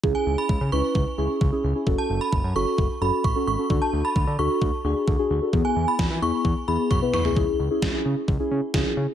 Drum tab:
SD |----------------|----------------|----------------|----o-----------|
T1 |----------------|----------------|----------------|------------o---|
T2 |----------------|----------------|----------------|--------------o-|
FT |----------------|----------------|----------------|---------------o|
BD |o---o---o---o---|o---o---o---o---|o---o---o---o---|o---o---o---o---|

SD |----o-------o---|
T1 |----------------|
T2 |----------------|
FT |----------------|
BD |o---o---o---o---|